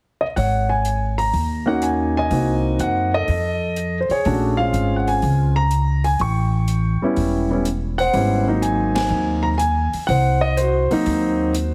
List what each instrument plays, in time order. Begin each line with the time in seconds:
0.21 grand piano D#5
0.36 upright bass G#1, grand piano C#5 F#5, kick, open hi-hat
0.69 grand piano G#5
0.85 closed hi-hat
1.18 grand piano A#5, open hi-hat
1.33 upright bass D#2, kick, open hi-hat
1.66 grand piano A#3 C#4 D#4 F#4 F#5
1.82 grand piano G#5, closed hi-hat
2.17 grand piano D#5 G#5
2.31 upright bass C2, grand piano A#3 C4 D#4 F#4, kick, open hi-hat
2.79 upright bass F#2, grand piano F#5, closed hi-hat
3.14 grand piano A4 D#5
3.28 upright bass F2, kick, open hi-hat
3.76 closed hi-hat
4.00 grand piano C5
4.09 grand piano G#4 C#5, muted upright bass stroke, open hi-hat
4.25 upright bass A#1, grand piano A3 C#4 D4 F#4, kick, open hi-hat
4.57 grand piano G#3 C4 C#4 F4 F5
4.73 upright bass G#1, closed hi-hat
4.96 grand piano F#5
5.07 grand piano G#5, open hi-hat
5.22 upright bass C#2, kick, open hi-hat
5.56 grand piano A#5
5.71 closed hi-hat
6.04 grand piano G#5, open hi-hat
6.19 upright bass A1, grand piano G5 C#6, kick, open hi-hat
6.68 closed hi-hat
7.01 grand piano G3 B3 C#4 E4, muted upright bass stroke
7.16 upright bass E1, kick, open hi-hat
7.50 grand piano G3 B3 C#4 E4
7.65 closed hi-hat
7.98 grand piano C5 F#5, open hi-hat
8.13 upright bass G#1, grand piano G3 B3 C#4 E4, kick, open hi-hat
8.46 grand piano F#3 A#3 C4 D#4
8.62 grand piano G#5, closed hi-hat
8.95 grand piano G#5, snare, ride
9.10 upright bass D#2
9.43 grand piano A#5
9.58 grand piano G#5, closed hi-hat
9.93 muted upright bass stroke, open hi-hat
10.07 upright bass C2, grand piano C5 F#5, kick, open hi-hat
10.41 grand piano D#5
10.57 grand piano F#4 C5, closed hi-hat
10.90 grand piano F#3 A#3 C4 D#4, muted upright bass stroke, open hi-hat
11.06 upright bass D#2, kick, open hi-hat
11.54 closed hi-hat